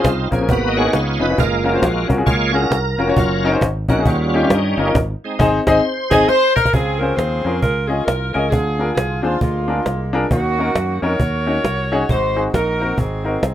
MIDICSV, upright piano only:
0, 0, Header, 1, 2, 480
1, 0, Start_track
1, 0, Key_signature, -5, "major"
1, 0, Tempo, 445765
1, 1497, Time_signature, 4, 2, 24, 8
1, 14583, End_track
2, 0, Start_track
2, 0, Title_t, "Upright piano"
2, 0, Program_c, 0, 0
2, 0, Note_on_c, 0, 49, 52
2, 302, Note_off_c, 0, 49, 0
2, 335, Note_on_c, 0, 60, 71
2, 336, Note_on_c, 0, 61, 62
2, 344, Note_on_c, 0, 65, 64
2, 350, Note_on_c, 0, 70, 74
2, 397, Note_off_c, 0, 60, 0
2, 398, Note_off_c, 0, 61, 0
2, 402, Note_off_c, 0, 65, 0
2, 405, Note_off_c, 0, 70, 0
2, 431, Note_on_c, 0, 60, 61
2, 442, Note_on_c, 0, 61, 59
2, 443, Note_on_c, 0, 65, 57
2, 458, Note_on_c, 0, 70, 70
2, 531, Note_off_c, 0, 60, 0
2, 536, Note_off_c, 0, 61, 0
2, 536, Note_on_c, 0, 44, 62
2, 537, Note_off_c, 0, 65, 0
2, 544, Note_off_c, 0, 70, 0
2, 827, Note_on_c, 0, 59, 69
2, 831, Note_on_c, 0, 63, 60
2, 834, Note_on_c, 0, 66, 58
2, 846, Note_on_c, 0, 68, 80
2, 883, Note_off_c, 0, 59, 0
2, 885, Note_off_c, 0, 63, 0
2, 887, Note_off_c, 0, 66, 0
2, 893, Note_off_c, 0, 68, 0
2, 917, Note_on_c, 0, 59, 66
2, 926, Note_on_c, 0, 63, 63
2, 926, Note_on_c, 0, 66, 57
2, 936, Note_on_c, 0, 68, 70
2, 982, Note_off_c, 0, 44, 0
2, 1002, Note_on_c, 0, 49, 60
2, 1014, Note_off_c, 0, 59, 0
2, 1018, Note_off_c, 0, 63, 0
2, 1018, Note_off_c, 0, 66, 0
2, 1023, Note_off_c, 0, 68, 0
2, 1286, Note_on_c, 0, 61, 68
2, 1292, Note_on_c, 0, 63, 63
2, 1300, Note_on_c, 0, 65, 69
2, 1303, Note_on_c, 0, 71, 83
2, 1352, Note_off_c, 0, 61, 0
2, 1355, Note_off_c, 0, 63, 0
2, 1359, Note_off_c, 0, 65, 0
2, 1361, Note_off_c, 0, 71, 0
2, 1385, Note_on_c, 0, 61, 67
2, 1397, Note_on_c, 0, 63, 64
2, 1403, Note_on_c, 0, 65, 63
2, 1409, Note_on_c, 0, 71, 71
2, 1455, Note_off_c, 0, 49, 0
2, 1487, Note_off_c, 0, 61, 0
2, 1494, Note_off_c, 0, 63, 0
2, 1496, Note_off_c, 0, 65, 0
2, 1499, Note_off_c, 0, 71, 0
2, 1765, Note_on_c, 0, 61, 71
2, 1772, Note_on_c, 0, 65, 73
2, 1774, Note_on_c, 0, 66, 70
2, 1782, Note_on_c, 0, 70, 83
2, 1831, Note_off_c, 0, 61, 0
2, 1835, Note_off_c, 0, 65, 0
2, 1836, Note_off_c, 0, 66, 0
2, 1840, Note_off_c, 0, 70, 0
2, 1856, Note_on_c, 0, 61, 65
2, 1867, Note_on_c, 0, 65, 58
2, 1870, Note_on_c, 0, 66, 61
2, 1879, Note_on_c, 0, 72, 77
2, 1987, Note_off_c, 0, 61, 0
2, 1993, Note_off_c, 0, 65, 0
2, 1994, Note_off_c, 0, 66, 0
2, 1999, Note_off_c, 0, 72, 0
2, 2238, Note_on_c, 0, 61, 72
2, 2250, Note_on_c, 0, 65, 64
2, 2252, Note_on_c, 0, 66, 64
2, 2258, Note_on_c, 0, 70, 74
2, 2308, Note_off_c, 0, 61, 0
2, 2314, Note_off_c, 0, 65, 0
2, 2314, Note_off_c, 0, 66, 0
2, 2317, Note_off_c, 0, 70, 0
2, 2336, Note_on_c, 0, 65, 57
2, 2337, Note_on_c, 0, 61, 63
2, 2349, Note_on_c, 0, 68, 73
2, 2350, Note_on_c, 0, 66, 63
2, 2467, Note_off_c, 0, 61, 0
2, 2467, Note_off_c, 0, 65, 0
2, 2473, Note_off_c, 0, 68, 0
2, 2474, Note_off_c, 0, 66, 0
2, 2720, Note_on_c, 0, 61, 68
2, 2724, Note_on_c, 0, 65, 68
2, 2734, Note_on_c, 0, 66, 63
2, 2741, Note_on_c, 0, 68, 81
2, 2788, Note_off_c, 0, 61, 0
2, 2790, Note_off_c, 0, 65, 0
2, 2795, Note_off_c, 0, 66, 0
2, 2799, Note_off_c, 0, 68, 0
2, 2821, Note_on_c, 0, 61, 65
2, 2833, Note_on_c, 0, 65, 58
2, 2833, Note_on_c, 0, 66, 59
2, 2841, Note_on_c, 0, 68, 70
2, 2949, Note_off_c, 0, 61, 0
2, 2955, Note_off_c, 0, 65, 0
2, 2955, Note_off_c, 0, 66, 0
2, 2959, Note_off_c, 0, 68, 0
2, 3213, Note_on_c, 0, 65, 75
2, 3217, Note_on_c, 0, 61, 71
2, 3228, Note_on_c, 0, 70, 86
2, 3229, Note_on_c, 0, 66, 70
2, 3275, Note_off_c, 0, 65, 0
2, 3276, Note_off_c, 0, 61, 0
2, 3282, Note_off_c, 0, 66, 0
2, 3282, Note_off_c, 0, 70, 0
2, 3309, Note_on_c, 0, 61, 75
2, 3315, Note_on_c, 0, 65, 75
2, 3325, Note_on_c, 0, 66, 72
2, 3330, Note_on_c, 0, 73, 89
2, 3408, Note_off_c, 0, 61, 0
2, 3411, Note_off_c, 0, 65, 0
2, 3416, Note_off_c, 0, 66, 0
2, 3419, Note_off_c, 0, 73, 0
2, 3709, Note_on_c, 0, 61, 90
2, 3716, Note_on_c, 0, 63, 85
2, 3722, Note_on_c, 0, 66, 80
2, 3724, Note_on_c, 0, 70, 100
2, 3762, Note_off_c, 0, 61, 0
2, 3766, Note_off_c, 0, 63, 0
2, 3769, Note_off_c, 0, 66, 0
2, 3770, Note_off_c, 0, 70, 0
2, 3788, Note_on_c, 0, 61, 78
2, 3794, Note_on_c, 0, 63, 73
2, 3806, Note_on_c, 0, 66, 67
2, 3807, Note_on_c, 0, 72, 84
2, 3912, Note_off_c, 0, 61, 0
2, 3915, Note_off_c, 0, 63, 0
2, 3921, Note_off_c, 0, 66, 0
2, 3921, Note_off_c, 0, 72, 0
2, 4186, Note_on_c, 0, 61, 80
2, 4187, Note_on_c, 0, 63, 68
2, 4195, Note_on_c, 0, 66, 67
2, 4199, Note_on_c, 0, 70, 81
2, 4241, Note_off_c, 0, 61, 0
2, 4241, Note_off_c, 0, 63, 0
2, 4245, Note_off_c, 0, 66, 0
2, 4247, Note_off_c, 0, 70, 0
2, 4284, Note_on_c, 0, 61, 67
2, 4297, Note_on_c, 0, 66, 60
2, 4298, Note_on_c, 0, 63, 63
2, 4310, Note_on_c, 0, 68, 72
2, 4375, Note_off_c, 0, 61, 0
2, 4381, Note_on_c, 0, 51, 67
2, 4382, Note_off_c, 0, 63, 0
2, 4382, Note_off_c, 0, 66, 0
2, 4388, Note_off_c, 0, 68, 0
2, 4672, Note_on_c, 0, 61, 70
2, 4675, Note_on_c, 0, 63, 67
2, 4681, Note_on_c, 0, 65, 61
2, 4691, Note_on_c, 0, 67, 83
2, 4723, Note_off_c, 0, 61, 0
2, 4725, Note_off_c, 0, 63, 0
2, 4727, Note_off_c, 0, 65, 0
2, 4733, Note_off_c, 0, 67, 0
2, 4768, Note_on_c, 0, 61, 66
2, 4779, Note_on_c, 0, 63, 58
2, 4785, Note_on_c, 0, 65, 63
2, 4789, Note_on_c, 0, 67, 75
2, 4881, Note_off_c, 0, 61, 0
2, 4887, Note_off_c, 0, 63, 0
2, 4890, Note_off_c, 0, 65, 0
2, 4892, Note_off_c, 0, 67, 0
2, 5106, Note_off_c, 0, 51, 0
2, 5142, Note_on_c, 0, 61, 76
2, 5145, Note_on_c, 0, 63, 70
2, 5156, Note_on_c, 0, 65, 63
2, 5162, Note_on_c, 0, 70, 80
2, 5198, Note_off_c, 0, 61, 0
2, 5200, Note_off_c, 0, 63, 0
2, 5205, Note_off_c, 0, 65, 0
2, 5208, Note_off_c, 0, 70, 0
2, 5228, Note_on_c, 0, 61, 66
2, 5231, Note_on_c, 0, 63, 64
2, 5238, Note_on_c, 0, 65, 62
2, 5247, Note_on_c, 0, 70, 76
2, 5327, Note_off_c, 0, 61, 0
2, 5328, Note_off_c, 0, 63, 0
2, 5332, Note_off_c, 0, 65, 0
2, 5336, Note_off_c, 0, 70, 0
2, 5805, Note_on_c, 0, 63, 101
2, 5807, Note_on_c, 0, 60, 93
2, 5815, Note_on_c, 0, 68, 96
2, 5821, Note_on_c, 0, 72, 100
2, 6007, Note_off_c, 0, 63, 0
2, 6008, Note_off_c, 0, 60, 0
2, 6013, Note_off_c, 0, 68, 0
2, 6016, Note_off_c, 0, 72, 0
2, 6103, Note_on_c, 0, 60, 107
2, 6109, Note_on_c, 0, 68, 98
2, 6111, Note_on_c, 0, 63, 97
2, 6116, Note_on_c, 0, 75, 106
2, 6231, Note_off_c, 0, 60, 0
2, 6234, Note_off_c, 0, 68, 0
2, 6236, Note_off_c, 0, 63, 0
2, 6238, Note_off_c, 0, 75, 0
2, 6589, Note_on_c, 0, 60, 104
2, 6591, Note_on_c, 0, 63, 100
2, 6603, Note_on_c, 0, 68, 93
2, 6715, Note_off_c, 0, 60, 0
2, 6716, Note_off_c, 0, 63, 0
2, 6722, Note_off_c, 0, 68, 0
2, 7259, Note_on_c, 0, 49, 57
2, 7547, Note_on_c, 0, 61, 72
2, 7552, Note_on_c, 0, 65, 62
2, 7557, Note_on_c, 0, 68, 60
2, 7562, Note_on_c, 0, 72, 74
2, 7656, Note_off_c, 0, 61, 0
2, 7658, Note_off_c, 0, 65, 0
2, 7660, Note_off_c, 0, 68, 0
2, 7663, Note_off_c, 0, 72, 0
2, 7986, Note_off_c, 0, 49, 0
2, 8016, Note_on_c, 0, 61, 72
2, 8028, Note_on_c, 0, 65, 67
2, 8032, Note_on_c, 0, 68, 57
2, 8036, Note_on_c, 0, 70, 73
2, 8130, Note_off_c, 0, 61, 0
2, 8136, Note_off_c, 0, 65, 0
2, 8138, Note_off_c, 0, 68, 0
2, 8140, Note_off_c, 0, 70, 0
2, 8493, Note_on_c, 0, 61, 68
2, 8494, Note_on_c, 0, 65, 57
2, 8502, Note_on_c, 0, 75, 72
2, 8503, Note_on_c, 0, 68, 66
2, 8609, Note_off_c, 0, 61, 0
2, 8610, Note_off_c, 0, 65, 0
2, 8614, Note_off_c, 0, 68, 0
2, 8614, Note_off_c, 0, 75, 0
2, 8981, Note_on_c, 0, 61, 71
2, 8984, Note_on_c, 0, 65, 65
2, 8991, Note_on_c, 0, 68, 64
2, 8996, Note_on_c, 0, 75, 79
2, 9094, Note_off_c, 0, 61, 0
2, 9095, Note_off_c, 0, 65, 0
2, 9099, Note_off_c, 0, 68, 0
2, 9101, Note_off_c, 0, 75, 0
2, 9185, Note_on_c, 0, 50, 51
2, 9466, Note_on_c, 0, 62, 64
2, 9476, Note_on_c, 0, 65, 63
2, 9483, Note_on_c, 0, 70, 74
2, 9485, Note_on_c, 0, 68, 63
2, 9577, Note_off_c, 0, 62, 0
2, 9582, Note_off_c, 0, 65, 0
2, 9585, Note_off_c, 0, 70, 0
2, 9586, Note_off_c, 0, 68, 0
2, 9911, Note_off_c, 0, 50, 0
2, 9936, Note_on_c, 0, 62, 72
2, 9940, Note_on_c, 0, 65, 61
2, 9947, Note_on_c, 0, 68, 66
2, 9951, Note_on_c, 0, 72, 80
2, 10052, Note_off_c, 0, 62, 0
2, 10054, Note_off_c, 0, 65, 0
2, 10058, Note_off_c, 0, 68, 0
2, 10060, Note_off_c, 0, 72, 0
2, 10421, Note_on_c, 0, 62, 72
2, 10431, Note_on_c, 0, 65, 62
2, 10436, Note_on_c, 0, 68, 61
2, 10439, Note_on_c, 0, 70, 76
2, 10535, Note_off_c, 0, 62, 0
2, 10540, Note_off_c, 0, 65, 0
2, 10542, Note_off_c, 0, 68, 0
2, 10544, Note_off_c, 0, 70, 0
2, 10908, Note_on_c, 0, 62, 91
2, 10910, Note_on_c, 0, 65, 77
2, 10921, Note_on_c, 0, 68, 75
2, 10925, Note_on_c, 0, 70, 93
2, 11019, Note_off_c, 0, 62, 0
2, 11020, Note_off_c, 0, 65, 0
2, 11025, Note_off_c, 0, 68, 0
2, 11028, Note_off_c, 0, 70, 0
2, 11113, Note_on_c, 0, 51, 57
2, 11400, Note_on_c, 0, 61, 68
2, 11409, Note_on_c, 0, 63, 66
2, 11409, Note_on_c, 0, 66, 69
2, 11420, Note_on_c, 0, 70, 79
2, 11505, Note_off_c, 0, 61, 0
2, 11509, Note_off_c, 0, 66, 0
2, 11510, Note_off_c, 0, 63, 0
2, 11515, Note_off_c, 0, 70, 0
2, 11836, Note_off_c, 0, 51, 0
2, 11868, Note_on_c, 0, 61, 72
2, 11878, Note_on_c, 0, 63, 68
2, 11882, Note_on_c, 0, 66, 63
2, 11883, Note_on_c, 0, 70, 76
2, 11980, Note_off_c, 0, 61, 0
2, 11985, Note_off_c, 0, 63, 0
2, 11987, Note_off_c, 0, 66, 0
2, 11987, Note_off_c, 0, 70, 0
2, 12347, Note_on_c, 0, 61, 74
2, 12350, Note_on_c, 0, 63, 58
2, 12356, Note_on_c, 0, 66, 62
2, 12363, Note_on_c, 0, 73, 78
2, 12459, Note_off_c, 0, 61, 0
2, 12461, Note_off_c, 0, 63, 0
2, 12464, Note_off_c, 0, 66, 0
2, 12467, Note_off_c, 0, 73, 0
2, 12832, Note_on_c, 0, 61, 86
2, 12835, Note_on_c, 0, 63, 74
2, 12839, Note_on_c, 0, 66, 82
2, 12843, Note_on_c, 0, 68, 95
2, 12942, Note_off_c, 0, 61, 0
2, 12943, Note_off_c, 0, 63, 0
2, 12946, Note_off_c, 0, 66, 0
2, 12947, Note_off_c, 0, 68, 0
2, 13032, Note_on_c, 0, 44, 54
2, 13303, Note_on_c, 0, 60, 71
2, 13311, Note_on_c, 0, 63, 65
2, 13313, Note_on_c, 0, 66, 62
2, 13317, Note_on_c, 0, 68, 70
2, 13417, Note_off_c, 0, 60, 0
2, 13422, Note_off_c, 0, 63, 0
2, 13423, Note_off_c, 0, 66, 0
2, 13425, Note_off_c, 0, 68, 0
2, 13756, Note_off_c, 0, 44, 0
2, 13785, Note_on_c, 0, 60, 71
2, 13796, Note_on_c, 0, 63, 61
2, 13799, Note_on_c, 0, 66, 61
2, 13799, Note_on_c, 0, 70, 75
2, 13898, Note_off_c, 0, 60, 0
2, 13904, Note_off_c, 0, 63, 0
2, 13905, Note_off_c, 0, 66, 0
2, 13905, Note_off_c, 0, 70, 0
2, 14254, Note_on_c, 0, 60, 67
2, 14265, Note_on_c, 0, 63, 61
2, 14266, Note_on_c, 0, 66, 60
2, 14274, Note_on_c, 0, 70, 69
2, 14373, Note_off_c, 0, 60, 0
2, 14379, Note_off_c, 0, 63, 0
2, 14379, Note_off_c, 0, 66, 0
2, 14383, Note_off_c, 0, 70, 0
2, 14583, End_track
0, 0, End_of_file